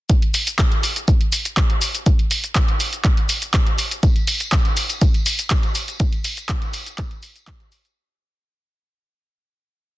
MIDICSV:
0, 0, Header, 1, 2, 480
1, 0, Start_track
1, 0, Tempo, 491803
1, 96, Time_signature, 4, 2, 24, 8
1, 9731, End_track
2, 0, Start_track
2, 0, Title_t, "Drums"
2, 93, Note_on_c, 9, 42, 67
2, 93, Note_on_c, 9, 82, 33
2, 94, Note_on_c, 9, 36, 118
2, 191, Note_off_c, 9, 36, 0
2, 191, Note_off_c, 9, 42, 0
2, 191, Note_off_c, 9, 82, 0
2, 218, Note_on_c, 9, 42, 42
2, 316, Note_off_c, 9, 42, 0
2, 333, Note_on_c, 9, 46, 102
2, 333, Note_on_c, 9, 82, 76
2, 430, Note_off_c, 9, 46, 0
2, 431, Note_off_c, 9, 82, 0
2, 459, Note_on_c, 9, 42, 42
2, 459, Note_on_c, 9, 82, 45
2, 556, Note_off_c, 9, 42, 0
2, 557, Note_off_c, 9, 82, 0
2, 572, Note_on_c, 9, 39, 127
2, 574, Note_on_c, 9, 36, 103
2, 574, Note_on_c, 9, 42, 70
2, 574, Note_on_c, 9, 82, 34
2, 670, Note_off_c, 9, 39, 0
2, 671, Note_off_c, 9, 36, 0
2, 671, Note_off_c, 9, 42, 0
2, 672, Note_off_c, 9, 82, 0
2, 700, Note_on_c, 9, 42, 42
2, 797, Note_off_c, 9, 42, 0
2, 813, Note_on_c, 9, 46, 92
2, 814, Note_on_c, 9, 82, 79
2, 911, Note_off_c, 9, 46, 0
2, 911, Note_off_c, 9, 82, 0
2, 939, Note_on_c, 9, 42, 42
2, 939, Note_on_c, 9, 82, 46
2, 1037, Note_off_c, 9, 42, 0
2, 1037, Note_off_c, 9, 82, 0
2, 1053, Note_on_c, 9, 36, 116
2, 1053, Note_on_c, 9, 42, 66
2, 1053, Note_on_c, 9, 82, 33
2, 1150, Note_off_c, 9, 42, 0
2, 1151, Note_off_c, 9, 36, 0
2, 1151, Note_off_c, 9, 82, 0
2, 1178, Note_on_c, 9, 42, 41
2, 1276, Note_off_c, 9, 42, 0
2, 1293, Note_on_c, 9, 46, 105
2, 1293, Note_on_c, 9, 82, 78
2, 1390, Note_off_c, 9, 46, 0
2, 1391, Note_off_c, 9, 82, 0
2, 1418, Note_on_c, 9, 42, 43
2, 1419, Note_on_c, 9, 82, 46
2, 1516, Note_off_c, 9, 42, 0
2, 1516, Note_off_c, 9, 82, 0
2, 1532, Note_on_c, 9, 39, 127
2, 1533, Note_on_c, 9, 36, 109
2, 1533, Note_on_c, 9, 42, 71
2, 1534, Note_on_c, 9, 82, 35
2, 1630, Note_off_c, 9, 39, 0
2, 1631, Note_off_c, 9, 36, 0
2, 1631, Note_off_c, 9, 42, 0
2, 1632, Note_off_c, 9, 82, 0
2, 1657, Note_on_c, 9, 42, 41
2, 1755, Note_off_c, 9, 42, 0
2, 1771, Note_on_c, 9, 46, 96
2, 1772, Note_on_c, 9, 82, 82
2, 1869, Note_off_c, 9, 46, 0
2, 1870, Note_off_c, 9, 82, 0
2, 1899, Note_on_c, 9, 42, 42
2, 1900, Note_on_c, 9, 82, 46
2, 1997, Note_off_c, 9, 42, 0
2, 1997, Note_off_c, 9, 82, 0
2, 2013, Note_on_c, 9, 42, 67
2, 2014, Note_on_c, 9, 36, 126
2, 2014, Note_on_c, 9, 82, 33
2, 2111, Note_off_c, 9, 36, 0
2, 2111, Note_off_c, 9, 42, 0
2, 2111, Note_off_c, 9, 82, 0
2, 2139, Note_on_c, 9, 42, 42
2, 2236, Note_off_c, 9, 42, 0
2, 2253, Note_on_c, 9, 46, 107
2, 2253, Note_on_c, 9, 82, 73
2, 2351, Note_off_c, 9, 46, 0
2, 2351, Note_off_c, 9, 82, 0
2, 2378, Note_on_c, 9, 42, 41
2, 2379, Note_on_c, 9, 82, 44
2, 2476, Note_off_c, 9, 42, 0
2, 2476, Note_off_c, 9, 82, 0
2, 2492, Note_on_c, 9, 39, 125
2, 2493, Note_on_c, 9, 36, 109
2, 2493, Note_on_c, 9, 42, 67
2, 2494, Note_on_c, 9, 82, 33
2, 2589, Note_off_c, 9, 39, 0
2, 2591, Note_off_c, 9, 36, 0
2, 2591, Note_off_c, 9, 42, 0
2, 2591, Note_off_c, 9, 82, 0
2, 2619, Note_on_c, 9, 42, 41
2, 2717, Note_off_c, 9, 42, 0
2, 2733, Note_on_c, 9, 46, 97
2, 2733, Note_on_c, 9, 82, 77
2, 2830, Note_off_c, 9, 46, 0
2, 2831, Note_off_c, 9, 82, 0
2, 2857, Note_on_c, 9, 42, 40
2, 2857, Note_on_c, 9, 82, 45
2, 2954, Note_off_c, 9, 42, 0
2, 2955, Note_off_c, 9, 82, 0
2, 2971, Note_on_c, 9, 39, 63
2, 2972, Note_on_c, 9, 42, 66
2, 2973, Note_on_c, 9, 36, 127
2, 2973, Note_on_c, 9, 82, 32
2, 3069, Note_off_c, 9, 39, 0
2, 3070, Note_off_c, 9, 36, 0
2, 3070, Note_off_c, 9, 42, 0
2, 3070, Note_off_c, 9, 82, 0
2, 3097, Note_on_c, 9, 42, 41
2, 3195, Note_off_c, 9, 42, 0
2, 3212, Note_on_c, 9, 46, 111
2, 3213, Note_on_c, 9, 82, 78
2, 3310, Note_off_c, 9, 46, 0
2, 3310, Note_off_c, 9, 82, 0
2, 3337, Note_on_c, 9, 42, 41
2, 3338, Note_on_c, 9, 82, 44
2, 3435, Note_off_c, 9, 42, 0
2, 3435, Note_off_c, 9, 82, 0
2, 3452, Note_on_c, 9, 39, 127
2, 3453, Note_on_c, 9, 36, 112
2, 3453, Note_on_c, 9, 42, 67
2, 3454, Note_on_c, 9, 82, 33
2, 3550, Note_off_c, 9, 39, 0
2, 3551, Note_off_c, 9, 36, 0
2, 3551, Note_off_c, 9, 42, 0
2, 3551, Note_off_c, 9, 82, 0
2, 3578, Note_on_c, 9, 42, 41
2, 3676, Note_off_c, 9, 42, 0
2, 3693, Note_on_c, 9, 46, 99
2, 3694, Note_on_c, 9, 82, 77
2, 3791, Note_off_c, 9, 46, 0
2, 3791, Note_off_c, 9, 82, 0
2, 3820, Note_on_c, 9, 42, 40
2, 3820, Note_on_c, 9, 82, 44
2, 3917, Note_off_c, 9, 42, 0
2, 3918, Note_off_c, 9, 82, 0
2, 3933, Note_on_c, 9, 42, 64
2, 3934, Note_on_c, 9, 36, 127
2, 3934, Note_on_c, 9, 54, 50
2, 3934, Note_on_c, 9, 82, 32
2, 4031, Note_off_c, 9, 42, 0
2, 4031, Note_off_c, 9, 54, 0
2, 4031, Note_off_c, 9, 82, 0
2, 4032, Note_off_c, 9, 36, 0
2, 4058, Note_on_c, 9, 42, 39
2, 4060, Note_on_c, 9, 54, 29
2, 4156, Note_off_c, 9, 42, 0
2, 4158, Note_off_c, 9, 54, 0
2, 4170, Note_on_c, 9, 54, 91
2, 4172, Note_on_c, 9, 46, 109
2, 4172, Note_on_c, 9, 82, 76
2, 4268, Note_off_c, 9, 54, 0
2, 4269, Note_off_c, 9, 46, 0
2, 4270, Note_off_c, 9, 82, 0
2, 4297, Note_on_c, 9, 42, 40
2, 4298, Note_on_c, 9, 82, 44
2, 4308, Note_on_c, 9, 54, 44
2, 4395, Note_off_c, 9, 42, 0
2, 4395, Note_off_c, 9, 82, 0
2, 4406, Note_off_c, 9, 54, 0
2, 4408, Note_on_c, 9, 54, 57
2, 4412, Note_on_c, 9, 39, 126
2, 4413, Note_on_c, 9, 42, 65
2, 4414, Note_on_c, 9, 82, 33
2, 4415, Note_on_c, 9, 36, 112
2, 4506, Note_off_c, 9, 54, 0
2, 4509, Note_off_c, 9, 39, 0
2, 4511, Note_off_c, 9, 42, 0
2, 4511, Note_off_c, 9, 82, 0
2, 4513, Note_off_c, 9, 36, 0
2, 4536, Note_on_c, 9, 54, 27
2, 4540, Note_on_c, 9, 42, 39
2, 4634, Note_off_c, 9, 54, 0
2, 4637, Note_off_c, 9, 42, 0
2, 4652, Note_on_c, 9, 46, 99
2, 4652, Note_on_c, 9, 54, 88
2, 4652, Note_on_c, 9, 82, 75
2, 4750, Note_off_c, 9, 46, 0
2, 4750, Note_off_c, 9, 54, 0
2, 4750, Note_off_c, 9, 82, 0
2, 4777, Note_on_c, 9, 42, 40
2, 4778, Note_on_c, 9, 54, 44
2, 4778, Note_on_c, 9, 82, 45
2, 4875, Note_off_c, 9, 42, 0
2, 4875, Note_off_c, 9, 82, 0
2, 4876, Note_off_c, 9, 54, 0
2, 4894, Note_on_c, 9, 42, 64
2, 4895, Note_on_c, 9, 36, 124
2, 4895, Note_on_c, 9, 82, 31
2, 4899, Note_on_c, 9, 54, 60
2, 4992, Note_off_c, 9, 42, 0
2, 4992, Note_off_c, 9, 82, 0
2, 4993, Note_off_c, 9, 36, 0
2, 4997, Note_off_c, 9, 54, 0
2, 5020, Note_on_c, 9, 42, 39
2, 5022, Note_on_c, 9, 54, 29
2, 5118, Note_off_c, 9, 42, 0
2, 5120, Note_off_c, 9, 54, 0
2, 5131, Note_on_c, 9, 54, 106
2, 5134, Note_on_c, 9, 46, 112
2, 5134, Note_on_c, 9, 82, 77
2, 5229, Note_off_c, 9, 54, 0
2, 5231, Note_off_c, 9, 46, 0
2, 5232, Note_off_c, 9, 82, 0
2, 5255, Note_on_c, 9, 54, 42
2, 5258, Note_on_c, 9, 42, 40
2, 5259, Note_on_c, 9, 82, 45
2, 5352, Note_off_c, 9, 54, 0
2, 5356, Note_off_c, 9, 42, 0
2, 5357, Note_off_c, 9, 82, 0
2, 5369, Note_on_c, 9, 39, 125
2, 5371, Note_on_c, 9, 42, 65
2, 5371, Note_on_c, 9, 54, 53
2, 5371, Note_on_c, 9, 82, 34
2, 5376, Note_on_c, 9, 36, 115
2, 5467, Note_off_c, 9, 39, 0
2, 5468, Note_off_c, 9, 42, 0
2, 5468, Note_off_c, 9, 54, 0
2, 5469, Note_off_c, 9, 82, 0
2, 5474, Note_off_c, 9, 36, 0
2, 5497, Note_on_c, 9, 42, 39
2, 5503, Note_on_c, 9, 54, 27
2, 5595, Note_off_c, 9, 42, 0
2, 5600, Note_off_c, 9, 54, 0
2, 5613, Note_on_c, 9, 46, 99
2, 5613, Note_on_c, 9, 82, 76
2, 5617, Note_on_c, 9, 54, 99
2, 5710, Note_off_c, 9, 46, 0
2, 5711, Note_off_c, 9, 82, 0
2, 5714, Note_off_c, 9, 54, 0
2, 5737, Note_on_c, 9, 54, 44
2, 5740, Note_on_c, 9, 42, 39
2, 5740, Note_on_c, 9, 82, 43
2, 5834, Note_off_c, 9, 54, 0
2, 5837, Note_off_c, 9, 42, 0
2, 5838, Note_off_c, 9, 82, 0
2, 5854, Note_on_c, 9, 42, 62
2, 5855, Note_on_c, 9, 82, 33
2, 5856, Note_on_c, 9, 36, 125
2, 5952, Note_off_c, 9, 42, 0
2, 5952, Note_off_c, 9, 82, 0
2, 5954, Note_off_c, 9, 36, 0
2, 5974, Note_on_c, 9, 54, 30
2, 5978, Note_on_c, 9, 42, 39
2, 6071, Note_off_c, 9, 54, 0
2, 6076, Note_off_c, 9, 42, 0
2, 6095, Note_on_c, 9, 46, 107
2, 6095, Note_on_c, 9, 82, 76
2, 6102, Note_on_c, 9, 54, 94
2, 6192, Note_off_c, 9, 46, 0
2, 6193, Note_off_c, 9, 82, 0
2, 6200, Note_off_c, 9, 54, 0
2, 6219, Note_on_c, 9, 42, 40
2, 6219, Note_on_c, 9, 82, 44
2, 6226, Note_on_c, 9, 54, 42
2, 6316, Note_off_c, 9, 42, 0
2, 6317, Note_off_c, 9, 82, 0
2, 6323, Note_off_c, 9, 54, 0
2, 6333, Note_on_c, 9, 39, 119
2, 6334, Note_on_c, 9, 42, 65
2, 6334, Note_on_c, 9, 82, 34
2, 6337, Note_on_c, 9, 36, 111
2, 6430, Note_off_c, 9, 39, 0
2, 6432, Note_off_c, 9, 42, 0
2, 6432, Note_off_c, 9, 82, 0
2, 6434, Note_off_c, 9, 36, 0
2, 6459, Note_on_c, 9, 42, 38
2, 6463, Note_on_c, 9, 54, 26
2, 6557, Note_off_c, 9, 42, 0
2, 6561, Note_off_c, 9, 54, 0
2, 6573, Note_on_c, 9, 46, 96
2, 6574, Note_on_c, 9, 82, 76
2, 6579, Note_on_c, 9, 54, 96
2, 6671, Note_off_c, 9, 46, 0
2, 6671, Note_off_c, 9, 82, 0
2, 6677, Note_off_c, 9, 54, 0
2, 6698, Note_on_c, 9, 54, 40
2, 6700, Note_on_c, 9, 42, 38
2, 6700, Note_on_c, 9, 82, 45
2, 6796, Note_off_c, 9, 54, 0
2, 6797, Note_off_c, 9, 42, 0
2, 6798, Note_off_c, 9, 82, 0
2, 6812, Note_on_c, 9, 39, 60
2, 6813, Note_on_c, 9, 42, 60
2, 6814, Note_on_c, 9, 82, 33
2, 6817, Note_on_c, 9, 36, 127
2, 6822, Note_on_c, 9, 54, 56
2, 6910, Note_off_c, 9, 39, 0
2, 6911, Note_off_c, 9, 42, 0
2, 6912, Note_off_c, 9, 82, 0
2, 6915, Note_off_c, 9, 36, 0
2, 6920, Note_off_c, 9, 54, 0
2, 6939, Note_on_c, 9, 42, 39
2, 6944, Note_on_c, 9, 54, 28
2, 7036, Note_off_c, 9, 42, 0
2, 7042, Note_off_c, 9, 54, 0
2, 7053, Note_on_c, 9, 46, 111
2, 7054, Note_on_c, 9, 82, 74
2, 7060, Note_on_c, 9, 54, 92
2, 7151, Note_off_c, 9, 46, 0
2, 7151, Note_off_c, 9, 82, 0
2, 7157, Note_off_c, 9, 54, 0
2, 7180, Note_on_c, 9, 42, 40
2, 7180, Note_on_c, 9, 82, 46
2, 7189, Note_on_c, 9, 54, 42
2, 7277, Note_off_c, 9, 42, 0
2, 7278, Note_off_c, 9, 82, 0
2, 7286, Note_off_c, 9, 54, 0
2, 7293, Note_on_c, 9, 39, 120
2, 7295, Note_on_c, 9, 42, 64
2, 7295, Note_on_c, 9, 82, 34
2, 7296, Note_on_c, 9, 36, 115
2, 7391, Note_off_c, 9, 39, 0
2, 7392, Note_off_c, 9, 42, 0
2, 7393, Note_off_c, 9, 82, 0
2, 7394, Note_off_c, 9, 36, 0
2, 7417, Note_on_c, 9, 54, 27
2, 7419, Note_on_c, 9, 42, 38
2, 7515, Note_off_c, 9, 54, 0
2, 7517, Note_off_c, 9, 42, 0
2, 7534, Note_on_c, 9, 46, 100
2, 7535, Note_on_c, 9, 82, 79
2, 7540, Note_on_c, 9, 54, 93
2, 7632, Note_off_c, 9, 46, 0
2, 7632, Note_off_c, 9, 82, 0
2, 7638, Note_off_c, 9, 54, 0
2, 7661, Note_on_c, 9, 42, 39
2, 7662, Note_on_c, 9, 82, 44
2, 7665, Note_on_c, 9, 54, 39
2, 7759, Note_off_c, 9, 42, 0
2, 7759, Note_off_c, 9, 82, 0
2, 7763, Note_off_c, 9, 54, 0
2, 9731, End_track
0, 0, End_of_file